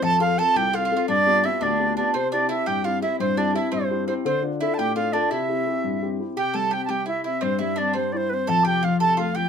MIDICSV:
0, 0, Header, 1, 4, 480
1, 0, Start_track
1, 0, Key_signature, 0, "major"
1, 0, Tempo, 351803
1, 45, Time_signature, 6, 3, 24, 8
1, 12945, End_track
2, 0, Start_track
2, 0, Title_t, "Flute"
2, 0, Program_c, 0, 73
2, 45, Note_on_c, 0, 81, 110
2, 275, Note_off_c, 0, 81, 0
2, 284, Note_on_c, 0, 77, 91
2, 525, Note_on_c, 0, 81, 93
2, 546, Note_off_c, 0, 77, 0
2, 774, Note_on_c, 0, 79, 105
2, 794, Note_off_c, 0, 81, 0
2, 1027, Note_on_c, 0, 77, 101
2, 1047, Note_off_c, 0, 79, 0
2, 1480, Note_off_c, 0, 77, 0
2, 1488, Note_on_c, 0, 74, 113
2, 1983, Note_on_c, 0, 76, 94
2, 2003, Note_off_c, 0, 74, 0
2, 2220, Note_on_c, 0, 74, 78
2, 2240, Note_off_c, 0, 76, 0
2, 2677, Note_off_c, 0, 74, 0
2, 2685, Note_on_c, 0, 74, 83
2, 2909, Note_off_c, 0, 74, 0
2, 2922, Note_on_c, 0, 72, 93
2, 3147, Note_off_c, 0, 72, 0
2, 3169, Note_on_c, 0, 74, 73
2, 3391, Note_off_c, 0, 74, 0
2, 3410, Note_on_c, 0, 76, 86
2, 3643, Note_on_c, 0, 79, 90
2, 3664, Note_off_c, 0, 76, 0
2, 3886, Note_on_c, 0, 77, 94
2, 3907, Note_off_c, 0, 79, 0
2, 4114, Note_off_c, 0, 77, 0
2, 4122, Note_on_c, 0, 76, 96
2, 4347, Note_off_c, 0, 76, 0
2, 4366, Note_on_c, 0, 72, 91
2, 4609, Note_on_c, 0, 74, 84
2, 4629, Note_off_c, 0, 72, 0
2, 4839, Note_off_c, 0, 74, 0
2, 4847, Note_on_c, 0, 76, 80
2, 5070, Note_off_c, 0, 76, 0
2, 5081, Note_on_c, 0, 72, 86
2, 5530, Note_off_c, 0, 72, 0
2, 5563, Note_on_c, 0, 72, 83
2, 5645, Note_off_c, 0, 72, 0
2, 5805, Note_on_c, 0, 72, 90
2, 6029, Note_off_c, 0, 72, 0
2, 6288, Note_on_c, 0, 76, 84
2, 6469, Note_on_c, 0, 81, 68
2, 6489, Note_off_c, 0, 76, 0
2, 6523, Note_on_c, 0, 79, 92
2, 6544, Note_off_c, 0, 81, 0
2, 6754, Note_off_c, 0, 79, 0
2, 6762, Note_on_c, 0, 77, 96
2, 6997, Note_on_c, 0, 74, 91
2, 7018, Note_off_c, 0, 77, 0
2, 7239, Note_on_c, 0, 76, 92
2, 7260, Note_off_c, 0, 74, 0
2, 8328, Note_off_c, 0, 76, 0
2, 8696, Note_on_c, 0, 79, 90
2, 8949, Note_on_c, 0, 81, 86
2, 8969, Note_off_c, 0, 79, 0
2, 9187, Note_on_c, 0, 79, 91
2, 9207, Note_off_c, 0, 81, 0
2, 9338, Note_off_c, 0, 79, 0
2, 9346, Note_on_c, 0, 81, 66
2, 9420, Note_on_c, 0, 79, 86
2, 9440, Note_off_c, 0, 81, 0
2, 9654, Note_off_c, 0, 79, 0
2, 9661, Note_on_c, 0, 76, 82
2, 9878, Note_off_c, 0, 76, 0
2, 9888, Note_on_c, 0, 76, 84
2, 10135, Note_on_c, 0, 72, 87
2, 10155, Note_off_c, 0, 76, 0
2, 10371, Note_off_c, 0, 72, 0
2, 10379, Note_on_c, 0, 76, 77
2, 10613, Note_on_c, 0, 74, 82
2, 10634, Note_off_c, 0, 76, 0
2, 10845, Note_off_c, 0, 74, 0
2, 10854, Note_on_c, 0, 72, 89
2, 11085, Note_on_c, 0, 74, 82
2, 11099, Note_off_c, 0, 72, 0
2, 11145, Note_on_c, 0, 72, 89
2, 11159, Note_off_c, 0, 74, 0
2, 11317, Note_on_c, 0, 71, 82
2, 11331, Note_off_c, 0, 72, 0
2, 11377, Note_on_c, 0, 72, 89
2, 11391, Note_off_c, 0, 71, 0
2, 11587, Note_on_c, 0, 81, 106
2, 11607, Note_off_c, 0, 72, 0
2, 11812, Note_off_c, 0, 81, 0
2, 11820, Note_on_c, 0, 79, 91
2, 12066, Note_on_c, 0, 77, 98
2, 12086, Note_off_c, 0, 79, 0
2, 12279, Note_off_c, 0, 77, 0
2, 12287, Note_on_c, 0, 81, 92
2, 12511, Note_off_c, 0, 81, 0
2, 12534, Note_on_c, 0, 77, 86
2, 12767, Note_on_c, 0, 79, 98
2, 12787, Note_off_c, 0, 77, 0
2, 12945, Note_off_c, 0, 79, 0
2, 12945, End_track
3, 0, Start_track
3, 0, Title_t, "Mandolin"
3, 0, Program_c, 1, 25
3, 32, Note_on_c, 1, 69, 89
3, 275, Note_on_c, 1, 65, 82
3, 286, Note_off_c, 1, 69, 0
3, 503, Note_off_c, 1, 65, 0
3, 529, Note_on_c, 1, 69, 88
3, 750, Note_off_c, 1, 69, 0
3, 766, Note_on_c, 1, 67, 81
3, 997, Note_off_c, 1, 67, 0
3, 1002, Note_on_c, 1, 65, 82
3, 1145, Note_off_c, 1, 65, 0
3, 1162, Note_on_c, 1, 65, 73
3, 1302, Note_off_c, 1, 65, 0
3, 1318, Note_on_c, 1, 65, 76
3, 1470, Note_off_c, 1, 65, 0
3, 1476, Note_on_c, 1, 62, 78
3, 1927, Note_off_c, 1, 62, 0
3, 1959, Note_on_c, 1, 64, 78
3, 2185, Note_off_c, 1, 64, 0
3, 2193, Note_on_c, 1, 62, 74
3, 2645, Note_off_c, 1, 62, 0
3, 2685, Note_on_c, 1, 62, 66
3, 2909, Note_off_c, 1, 62, 0
3, 2918, Note_on_c, 1, 60, 80
3, 3145, Note_off_c, 1, 60, 0
3, 3164, Note_on_c, 1, 62, 77
3, 3391, Note_off_c, 1, 62, 0
3, 3396, Note_on_c, 1, 64, 77
3, 3624, Note_off_c, 1, 64, 0
3, 3633, Note_on_c, 1, 67, 84
3, 3873, Note_off_c, 1, 67, 0
3, 3879, Note_on_c, 1, 65, 76
3, 4105, Note_off_c, 1, 65, 0
3, 4126, Note_on_c, 1, 64, 67
3, 4349, Note_off_c, 1, 64, 0
3, 4370, Note_on_c, 1, 60, 69
3, 4591, Note_off_c, 1, 60, 0
3, 4603, Note_on_c, 1, 62, 80
3, 4828, Note_off_c, 1, 62, 0
3, 4850, Note_on_c, 1, 64, 75
3, 5070, Note_on_c, 1, 60, 72
3, 5071, Note_off_c, 1, 64, 0
3, 5546, Note_off_c, 1, 60, 0
3, 5563, Note_on_c, 1, 60, 59
3, 5794, Note_off_c, 1, 60, 0
3, 5811, Note_on_c, 1, 60, 70
3, 6032, Note_off_c, 1, 60, 0
3, 6283, Note_on_c, 1, 64, 73
3, 6529, Note_off_c, 1, 64, 0
3, 6534, Note_on_c, 1, 67, 79
3, 6754, Note_off_c, 1, 67, 0
3, 6765, Note_on_c, 1, 65, 67
3, 6989, Note_off_c, 1, 65, 0
3, 7003, Note_on_c, 1, 62, 68
3, 7228, Note_off_c, 1, 62, 0
3, 7242, Note_on_c, 1, 64, 73
3, 8391, Note_off_c, 1, 64, 0
3, 8691, Note_on_c, 1, 67, 82
3, 8913, Note_off_c, 1, 67, 0
3, 8917, Note_on_c, 1, 69, 74
3, 9145, Note_off_c, 1, 69, 0
3, 9154, Note_on_c, 1, 67, 75
3, 9381, Note_off_c, 1, 67, 0
3, 9397, Note_on_c, 1, 67, 73
3, 9623, Note_off_c, 1, 67, 0
3, 9628, Note_on_c, 1, 64, 59
3, 9861, Note_off_c, 1, 64, 0
3, 9882, Note_on_c, 1, 64, 63
3, 10108, Note_off_c, 1, 64, 0
3, 10109, Note_on_c, 1, 60, 75
3, 10351, Note_on_c, 1, 64, 74
3, 10366, Note_off_c, 1, 60, 0
3, 10580, Note_off_c, 1, 64, 0
3, 10585, Note_on_c, 1, 62, 80
3, 10826, Note_on_c, 1, 60, 73
3, 10844, Note_off_c, 1, 62, 0
3, 11506, Note_off_c, 1, 60, 0
3, 11560, Note_on_c, 1, 69, 88
3, 11787, Note_off_c, 1, 69, 0
3, 11796, Note_on_c, 1, 67, 77
3, 12025, Note_off_c, 1, 67, 0
3, 12043, Note_on_c, 1, 65, 74
3, 12282, Note_on_c, 1, 69, 85
3, 12293, Note_off_c, 1, 65, 0
3, 12508, Note_off_c, 1, 69, 0
3, 12512, Note_on_c, 1, 65, 75
3, 12746, Note_off_c, 1, 65, 0
3, 12752, Note_on_c, 1, 67, 77
3, 12945, Note_off_c, 1, 67, 0
3, 12945, End_track
4, 0, Start_track
4, 0, Title_t, "Upright piano"
4, 0, Program_c, 2, 0
4, 27, Note_on_c, 2, 41, 75
4, 264, Note_on_c, 2, 60, 50
4, 270, Note_on_c, 2, 65, 48
4, 275, Note_on_c, 2, 69, 60
4, 488, Note_off_c, 2, 60, 0
4, 488, Note_off_c, 2, 65, 0
4, 495, Note_off_c, 2, 69, 0
4, 501, Note_off_c, 2, 41, 0
4, 508, Note_on_c, 2, 60, 54
4, 509, Note_on_c, 2, 65, 42
4, 758, Note_on_c, 2, 36, 60
4, 899, Note_off_c, 2, 60, 0
4, 899, Note_off_c, 2, 65, 0
4, 992, Note_on_c, 2, 60, 51
4, 1001, Note_on_c, 2, 65, 45
4, 1003, Note_on_c, 2, 69, 52
4, 1216, Note_off_c, 2, 60, 0
4, 1224, Note_off_c, 2, 65, 0
4, 1227, Note_off_c, 2, 36, 0
4, 1229, Note_off_c, 2, 69, 0
4, 1237, Note_on_c, 2, 60, 56
4, 1244, Note_on_c, 2, 65, 44
4, 1250, Note_on_c, 2, 69, 53
4, 1432, Note_off_c, 2, 60, 0
4, 1437, Note_off_c, 2, 65, 0
4, 1440, Note_off_c, 2, 69, 0
4, 1482, Note_on_c, 2, 43, 75
4, 1720, Note_on_c, 2, 59, 48
4, 1728, Note_on_c, 2, 65, 49
4, 1731, Note_on_c, 2, 67, 54
4, 1944, Note_off_c, 2, 59, 0
4, 1949, Note_off_c, 2, 43, 0
4, 1952, Note_off_c, 2, 65, 0
4, 1953, Note_off_c, 2, 67, 0
4, 1964, Note_on_c, 2, 59, 50
4, 1973, Note_on_c, 2, 67, 53
4, 2205, Note_on_c, 2, 38, 57
4, 2349, Note_off_c, 2, 59, 0
4, 2354, Note_off_c, 2, 67, 0
4, 2445, Note_on_c, 2, 59, 48
4, 2450, Note_on_c, 2, 65, 40
4, 2453, Note_on_c, 2, 67, 49
4, 2671, Note_off_c, 2, 38, 0
4, 2673, Note_off_c, 2, 59, 0
4, 2676, Note_off_c, 2, 65, 0
4, 2678, Note_off_c, 2, 67, 0
4, 2694, Note_on_c, 2, 59, 53
4, 2696, Note_on_c, 2, 65, 40
4, 2699, Note_on_c, 2, 67, 53
4, 2882, Note_off_c, 2, 59, 0
4, 2884, Note_off_c, 2, 65, 0
4, 2885, Note_off_c, 2, 67, 0
4, 2927, Note_on_c, 2, 48, 67
4, 3174, Note_on_c, 2, 60, 53
4, 3179, Note_on_c, 2, 64, 47
4, 3184, Note_on_c, 2, 67, 55
4, 3390, Note_off_c, 2, 60, 0
4, 3392, Note_off_c, 2, 48, 0
4, 3396, Note_off_c, 2, 64, 0
4, 3401, Note_off_c, 2, 67, 0
4, 3410, Note_on_c, 2, 60, 49
4, 3417, Note_on_c, 2, 64, 45
4, 3421, Note_on_c, 2, 67, 56
4, 3648, Note_on_c, 2, 43, 58
4, 3793, Note_off_c, 2, 60, 0
4, 3796, Note_off_c, 2, 64, 0
4, 3799, Note_off_c, 2, 67, 0
4, 3884, Note_on_c, 2, 60, 49
4, 3890, Note_on_c, 2, 64, 44
4, 3892, Note_on_c, 2, 67, 48
4, 4096, Note_off_c, 2, 60, 0
4, 4103, Note_off_c, 2, 64, 0
4, 4103, Note_off_c, 2, 67, 0
4, 4113, Note_off_c, 2, 43, 0
4, 4116, Note_on_c, 2, 60, 51
4, 4123, Note_on_c, 2, 64, 44
4, 4124, Note_on_c, 2, 67, 53
4, 4366, Note_on_c, 2, 43, 77
4, 4504, Note_off_c, 2, 60, 0
4, 4508, Note_off_c, 2, 64, 0
4, 4509, Note_off_c, 2, 67, 0
4, 4595, Note_on_c, 2, 60, 52
4, 4598, Note_on_c, 2, 64, 49
4, 4603, Note_on_c, 2, 67, 60
4, 4804, Note_off_c, 2, 60, 0
4, 4809, Note_off_c, 2, 64, 0
4, 4814, Note_off_c, 2, 67, 0
4, 4825, Note_on_c, 2, 60, 46
4, 4829, Note_on_c, 2, 64, 47
4, 4832, Note_off_c, 2, 43, 0
4, 4834, Note_on_c, 2, 67, 60
4, 5080, Note_on_c, 2, 43, 55
4, 5217, Note_off_c, 2, 60, 0
4, 5220, Note_off_c, 2, 64, 0
4, 5223, Note_off_c, 2, 67, 0
4, 5318, Note_on_c, 2, 60, 48
4, 5328, Note_on_c, 2, 64, 45
4, 5330, Note_on_c, 2, 67, 55
4, 5537, Note_off_c, 2, 60, 0
4, 5542, Note_off_c, 2, 64, 0
4, 5547, Note_off_c, 2, 67, 0
4, 5549, Note_off_c, 2, 43, 0
4, 5558, Note_on_c, 2, 60, 54
4, 5562, Note_on_c, 2, 64, 48
4, 5567, Note_on_c, 2, 67, 58
4, 5753, Note_off_c, 2, 60, 0
4, 5756, Note_off_c, 2, 64, 0
4, 5759, Note_off_c, 2, 67, 0
4, 5798, Note_on_c, 2, 50, 78
4, 6032, Note_on_c, 2, 62, 58
4, 6038, Note_on_c, 2, 65, 49
4, 6044, Note_on_c, 2, 69, 57
4, 6263, Note_off_c, 2, 62, 0
4, 6268, Note_off_c, 2, 50, 0
4, 6269, Note_off_c, 2, 65, 0
4, 6275, Note_off_c, 2, 69, 0
4, 6283, Note_on_c, 2, 62, 50
4, 6289, Note_on_c, 2, 65, 49
4, 6295, Note_on_c, 2, 69, 55
4, 6526, Note_on_c, 2, 45, 55
4, 6669, Note_off_c, 2, 62, 0
4, 6673, Note_off_c, 2, 65, 0
4, 6676, Note_off_c, 2, 69, 0
4, 6760, Note_on_c, 2, 62, 51
4, 6770, Note_on_c, 2, 65, 47
4, 6771, Note_on_c, 2, 69, 57
4, 6986, Note_off_c, 2, 62, 0
4, 6992, Note_off_c, 2, 45, 0
4, 6992, Note_off_c, 2, 65, 0
4, 6999, Note_off_c, 2, 69, 0
4, 7007, Note_on_c, 2, 62, 52
4, 7012, Note_on_c, 2, 65, 52
4, 7019, Note_on_c, 2, 69, 53
4, 7199, Note_off_c, 2, 62, 0
4, 7202, Note_off_c, 2, 65, 0
4, 7206, Note_off_c, 2, 69, 0
4, 7248, Note_on_c, 2, 48, 71
4, 7484, Note_on_c, 2, 60, 49
4, 7490, Note_on_c, 2, 67, 51
4, 7491, Note_on_c, 2, 64, 44
4, 7702, Note_off_c, 2, 60, 0
4, 7708, Note_off_c, 2, 64, 0
4, 7713, Note_off_c, 2, 48, 0
4, 7714, Note_off_c, 2, 67, 0
4, 7722, Note_on_c, 2, 60, 53
4, 7728, Note_on_c, 2, 64, 44
4, 7735, Note_on_c, 2, 67, 63
4, 7970, Note_on_c, 2, 43, 53
4, 8108, Note_off_c, 2, 60, 0
4, 8112, Note_off_c, 2, 64, 0
4, 8116, Note_off_c, 2, 67, 0
4, 8206, Note_on_c, 2, 60, 49
4, 8210, Note_on_c, 2, 64, 45
4, 8218, Note_on_c, 2, 67, 57
4, 8427, Note_off_c, 2, 60, 0
4, 8434, Note_off_c, 2, 43, 0
4, 8436, Note_off_c, 2, 64, 0
4, 8438, Note_off_c, 2, 67, 0
4, 8448, Note_on_c, 2, 60, 48
4, 8457, Note_on_c, 2, 64, 48
4, 8459, Note_on_c, 2, 67, 50
4, 8640, Note_off_c, 2, 60, 0
4, 8645, Note_off_c, 2, 64, 0
4, 8646, Note_off_c, 2, 67, 0
4, 8682, Note_on_c, 2, 48, 69
4, 8928, Note_on_c, 2, 55, 58
4, 9161, Note_off_c, 2, 55, 0
4, 9173, Note_on_c, 2, 60, 57
4, 9403, Note_off_c, 2, 60, 0
4, 9410, Note_on_c, 2, 55, 45
4, 9642, Note_off_c, 2, 55, 0
4, 9652, Note_on_c, 2, 64, 55
4, 9883, Note_off_c, 2, 64, 0
4, 9894, Note_on_c, 2, 60, 52
4, 10082, Note_off_c, 2, 48, 0
4, 10124, Note_off_c, 2, 60, 0
4, 10131, Note_on_c, 2, 43, 71
4, 10369, Note_on_c, 2, 55, 59
4, 10601, Note_off_c, 2, 55, 0
4, 10607, Note_on_c, 2, 60, 54
4, 10840, Note_off_c, 2, 60, 0
4, 10849, Note_on_c, 2, 55, 52
4, 11081, Note_off_c, 2, 55, 0
4, 11094, Note_on_c, 2, 64, 57
4, 11324, Note_off_c, 2, 64, 0
4, 11331, Note_on_c, 2, 60, 55
4, 11527, Note_off_c, 2, 43, 0
4, 11562, Note_off_c, 2, 60, 0
4, 11576, Note_on_c, 2, 41, 72
4, 11814, Note_on_c, 2, 48, 53
4, 12044, Note_off_c, 2, 48, 0
4, 12056, Note_on_c, 2, 53, 59
4, 12282, Note_on_c, 2, 48, 45
4, 12285, Note_off_c, 2, 53, 0
4, 12518, Note_off_c, 2, 48, 0
4, 12529, Note_on_c, 2, 57, 53
4, 12762, Note_off_c, 2, 57, 0
4, 12777, Note_on_c, 2, 53, 55
4, 12945, Note_off_c, 2, 41, 0
4, 12945, Note_off_c, 2, 53, 0
4, 12945, End_track
0, 0, End_of_file